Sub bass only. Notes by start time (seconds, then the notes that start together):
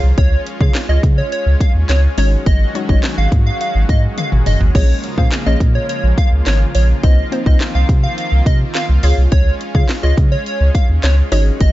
0.03 C2
0.18 C#2
0.61 C#3
0.89 C#2
1.03 C#3
1.46 C#2
1.75 D#2
1.89 C#2
2.18 G#1
2.46 G#1
2.89 G#1
3.18 G#1
3.32 G#2
3.75 G#1
3.89 G#2
4.32 G#1
4.47 F#1
4.61 G#1
4.75 A#1
5.18 A#2
5.46 A#1
5.61 A#2
6.04 A#1
6.32 C#2
6.46 G#1
6.75 A#1
7.03 C2
7.46 C2
7.75 C2
7.89 C3
8.32 C2
8.46 C3
8.89 C2
9.03 C#2
9.18 C2
9.32 C#2
9.75 C#3
10.03 C#2
10.18 C#3
10.61 C#2
10.89 D#2
11.03 C#2
11.32 G#1
11.61 G#1